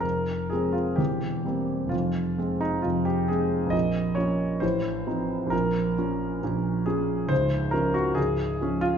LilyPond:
<<
  \new Staff \with { instrumentName = "Grand piano" } { \time 2/4 \key f \minor \tempo 4 = 67 bes'8 aes'16 f'16 g'4 | f'8. ees'16 f'16 g'16 aes'8 | ees''8 des''8 c''4 | bes'4 r8 aes'8 |
\key des \major c''8 bes'16 ges'16 aes'8. f'16 | }
  \new Staff \with { instrumentName = "Grand piano" } { \clef bass \time 2/4 \key f \minor <f,, f,>8 <f aes c'>8 <e,, e,>8 <g bes c'>8 | <f,, f,>8 <aes c'>8 <f,, f,>8 <aes c'>8 | <bes,, bes,>8 <f bes des'>8 <a,, a,>8 <f c' ees'>8 | <bes,, bes,>8 <f des'>8 <bes,, bes,>8 <f des'>8 |
\key des \major <des,, des,>8 <f des'>8 <des,, des,>8 <f des'>8 | }
>>